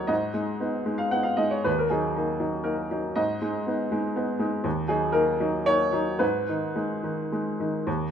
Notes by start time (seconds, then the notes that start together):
Already playing: D#2 F#3 A#3 D#4 A#4 C#5
0.07 G#2 D#5
0.34 G#3 D#4
0.60 B3 D#4
0.86 G#3 D#4
0.98 F5
1.11 B3 D#4 F#5
1.23 F5
1.37 G#3 D#4 D#5
1.51 C#5
1.64 D#2 B4
1.79 A#4
1.90 F#3 D#4 G#4
2.16 A#3 D#4
2.40 F#3 D#4
2.64 A#3 D#4 A#4
2.91 F#3 D#4
3.15 G#2 D#5
3.42 G#3 D#4
3.67 B3 D#4
3.92 G#3 D#4
4.16 B3 D#4
4.39 G#3 D#4
4.64 D#2
4.88 F#3 D#4 G#4
5.12 A#3 D#4 A#4
5.40 F#3 D#4
5.66 A#3 D#4 C#5
5.93 F#3 D#4
6.19 G#2 B4
6.49 D#3 D#4
6.75 G#3 D#4
7.03 D#3 D#4
7.32 G#3 D#4
7.60 D#3 D#4
7.87 D#2